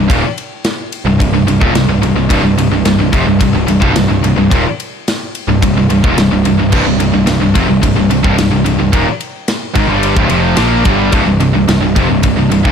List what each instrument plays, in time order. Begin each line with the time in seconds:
0.10 picked electric bass D#1, distorted electric guitar D#2 A#2, kick, ride
0.38 ride
0.64 snare, ride
0.92 ride
1.05 picked electric bass C1, distorted electric guitar C2 G2
1.20 picked electric bass C1, distorted electric guitar C2 G2, kick, ride
1.32 picked electric bass C1, distorted electric guitar C2 G2
1.45 picked electric bass C1, distorted electric guitar C2 G2, ride
1.60 picked electric bass D#1, distorted electric guitar D#2 A#2, kick
1.73 picked electric bass C1, distorted electric guitar C2 G2, snare, ride
1.87 picked electric bass C1, distorted electric guitar C2 G2
2.01 picked electric bass C1, distorted electric guitar C2 G2, ride
2.14 picked electric bass C1, distorted electric guitar C2 G2
2.29 picked electric bass C1, distorted electric guitar C2 G2, kick, ride
2.42 picked electric bass C1, distorted electric guitar C2 G2
2.56 picked electric bass C1, distorted electric guitar C2 G2, ride
2.70 picked electric bass C1, distorted electric guitar C2 G2
2.84 picked electric bass C1, distorted electric guitar C2 G2, snare, ride
2.98 picked electric bass C1, distorted electric guitar C2 G2
3.12 picked electric bass F1, distorted electric guitar F2 C3, kick, ride
3.25 picked electric bass C1, distorted electric guitar C2 G2
3.39 picked electric bass C1, distorted electric guitar C2 G2, kick, ride
3.53 picked electric bass C1, distorted electric guitar C2 G2
3.67 picked electric bass C1, distorted electric guitar C2 G2, ride
3.80 picked electric bass C1, distorted electric guitar C2 G2, kick
3.94 picked electric bass C1, distorted electric guitar C2 G2, snare, ride
4.08 picked electric bass C1, distorted electric guitar C2 G2
4.23 picked electric bass C1, distorted electric guitar C2 G2, ride
4.36 picked electric bass C1, distorted electric guitar C2 G2
4.50 picked electric bass D#1, distorted electric guitar D#2 A#2, kick, ride
4.80 ride
5.08 snare, ride
5.35 ride
5.48 picked electric bass C1, distorted electric guitar C2 G2
5.62 picked electric bass C1, distorted electric guitar C2 G2, kick, ride
5.76 picked electric bass C1, distorted electric guitar C2 G2
5.89 picked electric bass C1, distorted electric guitar C2 G2, ride
6.04 picked electric bass D#1, distorted electric guitar D#2 A#2, kick
6.16 picked electric bass C1, distorted electric guitar C2 G2, snare, ride
6.31 picked electric bass C1, distorted electric guitar C2 G2
6.45 picked electric bass C1, distorted electric guitar C2 G2, ride
6.58 picked electric bass C1, distorted electric guitar C2 G2
6.72 picked electric bass C1, distorted electric guitar C2 G2, kick, crash
6.86 picked electric bass C1, distorted electric guitar C2 G2
7.00 picked electric bass C1, distorted electric guitar C2 G2, ride
7.13 picked electric bass C1, distorted electric guitar C2 G2
7.26 picked electric bass C1, distorted electric guitar C2 G2, snare, ride
7.40 picked electric bass C1, distorted electric guitar C2 G2
7.54 picked electric bass F1, distorted electric guitar F2 C3, kick, ride
7.67 picked electric bass C1, distorted electric guitar C2 G2
7.82 picked electric bass C1, distorted electric guitar C2 G2, kick, ride
7.96 picked electric bass C1, distorted electric guitar C2 G2
8.10 picked electric bass C1, distorted electric guitar C2 G2, ride
8.23 picked electric bass C1, distorted electric guitar C2 G2, kick
8.37 picked electric bass C1, distorted electric guitar C2 G2, snare, ride
8.51 picked electric bass C1, distorted electric guitar C2 G2
8.65 picked electric bass C1, distorted electric guitar C2 G2, ride
8.79 picked electric bass C1, distorted electric guitar C2 G2
8.93 picked electric bass D#1, distorted electric guitar D#2 A#2, kick, ride
9.21 ride
9.48 snare, ride
9.75 picked electric bass G#1, distorted electric guitar G#2 D#3, kick, ride
9.88 picked electric bass G1, distorted electric guitar G2 D3 G3
10.03 ride
10.16 picked electric bass C1, distorted electric guitar C2 G2, kick
10.29 picked electric bass F1, distorted electric guitar F2 C3 F3, ride
10.57 picked electric bass A#1, distorted electric guitar A#2 F3 A#3, snare, ride
10.85 picked electric bass G1, distorted electric guitar G2 D3 G3, kick, ride
11.12 picked electric bass C1, distorted electric guitar C2 G2, kick, ride
11.26 picked electric bass C1, distorted electric guitar C2 G2
11.40 picked electric bass C1, distorted electric guitar C2 G2, ride
11.54 picked electric bass C1, distorted electric guitar C2 G2
11.67 picked electric bass C1, distorted electric guitar C2 G2, snare, ride
11.82 picked electric bass C1, distorted electric guitar C2 G2
11.96 picked electric bass F1, distorted electric guitar F2 C3, kick, ride
12.09 picked electric bass C1, distorted electric guitar C2 G2
12.23 picked electric bass C1, distorted electric guitar C2 G2, kick, ride
12.37 picked electric bass C1, distorted electric guitar C2 G2
12.50 picked electric bass C1, distorted electric guitar C2 G2, ride
12.65 picked electric bass C1, distorted electric guitar C2 G2, kick